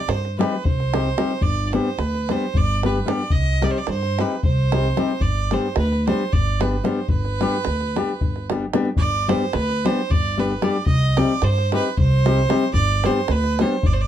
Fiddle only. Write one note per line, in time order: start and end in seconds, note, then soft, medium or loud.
0.00 0.11 D5 medium
0.09 0.38 C5 medium
0.38 0.66 B4 medium
0.64 1.43 C5 medium
1.42 1.66 D5 medium
1.66 1.74 D5 medium
1.73 2.00 C5 medium
1.99 2.32 B4 medium
2.31 2.58 C5 medium
2.57 2.84 D5 loud
2.86 3.10 B4 medium
3.08 3.33 D5 medium
3.31 3.65 D#5 medium
3.64 3.72 D5 medium
3.71 3.79 C5 medium
3.78 3.89 D5 medium
3.90 4.22 C5 medium
4.20 4.43 B4 medium
4.44 5.23 C5 medium
5.22 5.55 D5 medium
5.53 5.77 C5 medium
5.78 6.06 B4 medium
6.07 6.34 C5 medium
6.32 6.62 D5 medium
6.60 6.86 B4 medium
6.85 7.09 C5 medium
7.09 8.46 B4 loud
8.98 9.30 D5 loud
9.29 9.54 C5 medium
9.53 9.87 B4 loud
9.86 10.12 C5 medium
10.11 10.41 D5 loud
10.39 10.64 B4 medium
10.63 10.85 D5 medium
10.86 11.19 D#5 medium
11.17 11.45 D5 medium
11.44 11.74 C5 loud
11.74 11.97 B4 medium
11.99 12.70 C5 loud
12.73 13.07 D5 loud
13.05 13.33 C5 medium
13.31 13.62 B4 loud
13.61 13.88 C5 medium
13.86 13.95 D5 medium
13.93 14.02 C5 medium
14.01 14.07 D5 medium